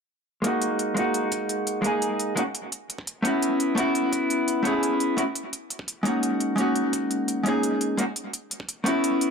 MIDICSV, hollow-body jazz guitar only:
0, 0, Header, 1, 2, 480
1, 0, Start_track
1, 0, Tempo, 350877
1, 603, Time_signature, 4, 2, 24, 8
1, 12729, End_track
2, 0, Start_track
2, 0, Title_t, "Hollow-body jazz guitar"
2, 0, Program_c, 0, 26
2, 573, Note_on_c, 0, 56, 70
2, 591, Note_on_c, 0, 58, 65
2, 606, Note_on_c, 0, 61, 66
2, 617, Note_off_c, 0, 61, 0
2, 622, Note_on_c, 0, 63, 66
2, 640, Note_on_c, 0, 66, 81
2, 1276, Note_off_c, 0, 56, 0
2, 1288, Note_off_c, 0, 58, 0
2, 1292, Note_on_c, 0, 56, 76
2, 1304, Note_off_c, 0, 63, 0
2, 1308, Note_on_c, 0, 58, 69
2, 1313, Note_off_c, 0, 66, 0
2, 1325, Note_on_c, 0, 61, 71
2, 1336, Note_off_c, 0, 61, 0
2, 1341, Note_on_c, 0, 63, 70
2, 1359, Note_on_c, 0, 66, 84
2, 2470, Note_off_c, 0, 56, 0
2, 2487, Note_off_c, 0, 58, 0
2, 2487, Note_on_c, 0, 56, 77
2, 2502, Note_on_c, 0, 58, 69
2, 2503, Note_off_c, 0, 63, 0
2, 2512, Note_off_c, 0, 66, 0
2, 2521, Note_on_c, 0, 61, 70
2, 2531, Note_off_c, 0, 61, 0
2, 2537, Note_on_c, 0, 63, 71
2, 2553, Note_on_c, 0, 68, 85
2, 3196, Note_off_c, 0, 56, 0
2, 3204, Note_off_c, 0, 58, 0
2, 3221, Note_off_c, 0, 63, 0
2, 3222, Note_on_c, 0, 56, 74
2, 3229, Note_off_c, 0, 68, 0
2, 3231, Note_on_c, 0, 58, 63
2, 3241, Note_on_c, 0, 61, 65
2, 3247, Note_on_c, 0, 63, 64
2, 3256, Note_on_c, 0, 66, 82
2, 3295, Note_off_c, 0, 56, 0
2, 3299, Note_off_c, 0, 58, 0
2, 3304, Note_off_c, 0, 61, 0
2, 3307, Note_off_c, 0, 63, 0
2, 3312, Note_off_c, 0, 66, 0
2, 4411, Note_on_c, 0, 57, 71
2, 4426, Note_on_c, 0, 59, 65
2, 4444, Note_on_c, 0, 61, 70
2, 4462, Note_on_c, 0, 64, 65
2, 4478, Note_on_c, 0, 66, 79
2, 5113, Note_off_c, 0, 57, 0
2, 5126, Note_off_c, 0, 59, 0
2, 5129, Note_on_c, 0, 57, 79
2, 5135, Note_off_c, 0, 61, 0
2, 5144, Note_off_c, 0, 64, 0
2, 5144, Note_on_c, 0, 59, 72
2, 5152, Note_off_c, 0, 66, 0
2, 5162, Note_on_c, 0, 61, 70
2, 5177, Note_on_c, 0, 64, 74
2, 5196, Note_on_c, 0, 66, 86
2, 6311, Note_off_c, 0, 57, 0
2, 6325, Note_off_c, 0, 59, 0
2, 6328, Note_on_c, 0, 57, 77
2, 6334, Note_off_c, 0, 61, 0
2, 6341, Note_off_c, 0, 64, 0
2, 6344, Note_on_c, 0, 59, 71
2, 6351, Note_off_c, 0, 66, 0
2, 6361, Note_on_c, 0, 61, 71
2, 6379, Note_on_c, 0, 64, 72
2, 6394, Note_on_c, 0, 68, 87
2, 7037, Note_off_c, 0, 57, 0
2, 7045, Note_off_c, 0, 59, 0
2, 7053, Note_off_c, 0, 61, 0
2, 7062, Note_off_c, 0, 64, 0
2, 7068, Note_on_c, 0, 57, 72
2, 7070, Note_off_c, 0, 68, 0
2, 7074, Note_on_c, 0, 59, 65
2, 7083, Note_on_c, 0, 61, 66
2, 7091, Note_on_c, 0, 64, 65
2, 7100, Note_on_c, 0, 66, 81
2, 7137, Note_off_c, 0, 57, 0
2, 7141, Note_off_c, 0, 59, 0
2, 7145, Note_off_c, 0, 61, 0
2, 7149, Note_off_c, 0, 64, 0
2, 7153, Note_off_c, 0, 66, 0
2, 8248, Note_on_c, 0, 56, 73
2, 8264, Note_on_c, 0, 58, 66
2, 8282, Note_on_c, 0, 61, 65
2, 8298, Note_on_c, 0, 63, 67
2, 8316, Note_on_c, 0, 66, 80
2, 8952, Note_off_c, 0, 56, 0
2, 8965, Note_off_c, 0, 58, 0
2, 8969, Note_on_c, 0, 56, 77
2, 8974, Note_off_c, 0, 61, 0
2, 8982, Note_off_c, 0, 63, 0
2, 8985, Note_on_c, 0, 58, 70
2, 8991, Note_off_c, 0, 66, 0
2, 9003, Note_on_c, 0, 61, 72
2, 9018, Note_on_c, 0, 63, 71
2, 9035, Note_on_c, 0, 66, 87
2, 10153, Note_off_c, 0, 56, 0
2, 10166, Note_off_c, 0, 58, 0
2, 10170, Note_on_c, 0, 56, 77
2, 10174, Note_off_c, 0, 61, 0
2, 10182, Note_off_c, 0, 63, 0
2, 10186, Note_on_c, 0, 58, 70
2, 10190, Note_off_c, 0, 66, 0
2, 10205, Note_on_c, 0, 61, 70
2, 10219, Note_on_c, 0, 63, 71
2, 10237, Note_on_c, 0, 68, 84
2, 10878, Note_off_c, 0, 56, 0
2, 10886, Note_off_c, 0, 58, 0
2, 10895, Note_off_c, 0, 61, 0
2, 10903, Note_off_c, 0, 63, 0
2, 10909, Note_on_c, 0, 56, 74
2, 10911, Note_off_c, 0, 68, 0
2, 10915, Note_on_c, 0, 58, 68
2, 10925, Note_on_c, 0, 61, 64
2, 10933, Note_on_c, 0, 63, 69
2, 10942, Note_on_c, 0, 66, 82
2, 10978, Note_off_c, 0, 56, 0
2, 10981, Note_off_c, 0, 58, 0
2, 10986, Note_off_c, 0, 61, 0
2, 10990, Note_off_c, 0, 63, 0
2, 10994, Note_off_c, 0, 66, 0
2, 12091, Note_on_c, 0, 57, 74
2, 12107, Note_on_c, 0, 59, 67
2, 12123, Note_on_c, 0, 61, 67
2, 12139, Note_on_c, 0, 64, 67
2, 12157, Note_on_c, 0, 66, 83
2, 12729, Note_off_c, 0, 57, 0
2, 12729, Note_off_c, 0, 59, 0
2, 12729, Note_off_c, 0, 61, 0
2, 12729, Note_off_c, 0, 64, 0
2, 12729, Note_off_c, 0, 66, 0
2, 12729, End_track
0, 0, End_of_file